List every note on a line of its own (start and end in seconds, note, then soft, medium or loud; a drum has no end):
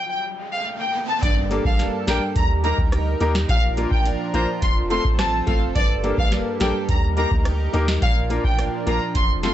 0.00 riser medium
0.10 0.18 G5 medium
0.52 0.61 F5 medium
0.80 0.89 G5 medium
1.09 1.17 A5 medium
1.23 1.60 G1 loud
1.23 2.42 G2 medium
1.23 3.47 G3 medium
1.23 2.35 A#3 medium
1.23 2.35 A4 medium
1.23 1.32 D5 medium
1.23 kick loud
1.23 closed hi-hat medium
1.51 1.62 A#3 medium
1.51 2.64 A#3 medium
1.51 1.62 D4 medium
1.51 1.63 G4 medium
1.51 1.63 A4 medium
1.51 closed hi-hat medium
1.65 1.90 G1 medium
1.65 1.74 F5 medium
1.65 kick medium
1.79 2.42 D4 medium
1.79 snare medium
1.79 closed hi-hat medium
2.07 2.20 A#1 loud
2.07 2.19 A#3 medium
2.07 2.19 D4 medium
2.07 2.19 G4 medium
2.07 2.42 A4 medium
2.07 2.19 A#4 medium
2.07 2.17 G5 medium
2.07 snare loud
2.07 closed hi-hat medium
2.36 2.73 D#2 loud
2.36 3.48 D#4 medium
2.36 3.48 A#4 medium
2.36 2.45 A#5 medium
2.36 kick medium
2.36 closed hi-hat medium
2.64 2.75 A#3 medium
2.64 3.55 A#3 medium
2.64 2.76 D#4 medium
2.64 2.76 G4 medium
2.64 2.76 A#4 medium
2.64 2.73 A#5 medium
2.64 closed hi-hat medium
2.78 3.15 D2 medium
2.78 kick loud
2.92 3.55 G4 medium
2.92 cross-stick loud
2.92 closed hi-hat medium
3.20 3.45 D#2 medium
3.20 3.32 A#3 medium
3.20 3.32 D#4 medium
3.20 3.55 D#4 medium
3.20 3.32 G4 medium
3.20 3.33 A#4 loud
3.20 closed hi-hat medium
3.35 snare loud
3.49 3.86 A#1 loud
3.49 4.62 A#2 medium
3.49 5.73 F3 medium
3.49 4.61 D4 medium
3.49 4.61 A#4 medium
3.49 3.58 F5 loud
3.49 kick loud
3.49 closed hi-hat medium
3.77 3.89 A#3 medium
3.77 4.68 A#3 medium
3.77 3.89 D4 medium
3.77 3.89 F4 medium
3.77 3.89 A#4 medium
3.77 closed hi-hat medium
3.91 4.16 A1 medium
3.91 4.00 G5 medium
3.91 kick medium
4.05 4.68 D4 medium
4.05 closed hi-hat medium
4.34 4.46 A#1 medium
4.34 4.45 A#3 medium
4.34 4.45 D4 medium
4.34 4.68 F4 medium
4.34 4.46 F4 medium
4.34 4.46 C5 medium
4.34 4.43 A#5 medium
4.34 closed hi-hat medium
4.62 4.99 F1 loud
4.62 5.75 F2 medium
4.62 5.74 C4 medium
4.62 6.87 A4 medium
4.62 4.71 C6 medium
4.62 kick medium
4.62 closed hi-hat medium
4.90 5.02 A3 medium
4.90 5.81 A3 medium
4.90 5.02 C4 medium
4.90 5.02 F4 medium
4.90 5.02 A4 medium
4.90 4.99 C6 medium
4.90 closed hi-hat medium
5.05 5.42 A1 loud
5.05 kick loud
5.19 5.81 F4 medium
5.19 5.28 A5 medium
5.19 cross-stick loud
5.19 snare loud
5.19 closed hi-hat medium
5.47 5.72 G1 medium
5.47 5.58 A3 medium
5.47 5.59 C4 medium
5.47 5.81 C4 medium
5.47 5.59 F4 medium
5.47 5.59 A4 medium
5.47 5.56 F5 medium
5.47 kick medium
5.47 closed hi-hat medium
5.76 6.13 G1 loud
5.76 6.94 G2 medium
5.76 8.00 G3 medium
5.76 6.88 A#3 medium
5.76 5.84 D5 medium
5.76 kick loud
5.76 closed hi-hat medium
6.03 6.15 A#3 medium
6.03 7.17 A#3 medium
6.03 6.15 D4 medium
6.03 6.15 G4 medium
6.03 6.16 A4 medium
6.03 closed hi-hat medium
6.18 6.43 G1 medium
6.18 6.27 F5 medium
6.18 kick loud
6.32 6.94 D4 medium
6.32 snare medium
6.32 closed hi-hat medium
6.60 6.73 A#1 loud
6.60 6.72 A#3 medium
6.60 6.72 D4 medium
6.60 6.72 G4 medium
6.60 6.95 A4 medium
6.60 6.72 A4 medium
6.60 6.69 G5 medium
6.60 snare loud
6.60 closed hi-hat medium
6.89 7.26 D#2 loud
6.89 8.01 D#4 medium
6.89 9.13 A#4 medium
6.89 6.98 A#5 medium
6.89 kick medium
6.89 closed hi-hat medium
7.17 7.28 A#3 medium
7.17 8.08 A#3 medium
7.17 7.28 D#4 medium
7.17 7.29 G4 medium
7.17 7.29 A#4 medium
7.17 7.26 A#5 medium
7.17 closed hi-hat medium
7.31 7.68 D2 medium
7.31 kick loud
7.45 8.08 G4 medium
7.45 cross-stick loud
7.45 closed hi-hat medium
7.73 7.98 D#2 medium
7.73 7.85 A#3 medium
7.73 7.85 D#4 medium
7.73 8.08 D#4 medium
7.73 7.85 G4 medium
7.73 7.85 A#4 loud
7.73 closed hi-hat medium
7.88 snare loud
8.02 8.39 A#1 loud
8.02 9.15 A#2 medium
8.02 9.54 F3 medium
8.02 9.14 D4 medium
8.02 8.11 F5 loud
8.02 kick loud
8.02 closed hi-hat medium
8.30 8.41 A#3 medium
8.30 9.21 A#3 medium
8.30 8.42 D4 medium
8.30 8.42 F4 medium
8.30 8.42 A#4 medium
8.30 closed hi-hat medium
8.44 8.69 A1 medium
8.44 8.53 G5 medium
8.44 kick medium
8.59 9.21 D4 medium
8.59 cross-stick medium
8.59 closed hi-hat medium
8.86 8.99 A#1 loud
8.86 8.98 A#3 medium
8.86 8.98 D4 medium
8.86 9.21 F4 medium
8.86 8.98 F4 medium
8.86 8.99 A#4 medium
8.86 8.96 A#5 medium
8.86 closed hi-hat medium
9.15 9.52 F1 loud
9.15 9.54 F2 medium
9.15 9.54 C4 medium
9.15 9.54 A4 medium
9.15 9.24 C6 medium
9.15 kick loud
9.15 closed hi-hat medium
9.43 9.54 A3 medium
9.43 9.54 C4 medium
9.43 9.54 F4 medium
9.43 9.54 A4 medium
9.43 9.52 C6 medium
9.43 snare medium
9.43 closed hi-hat medium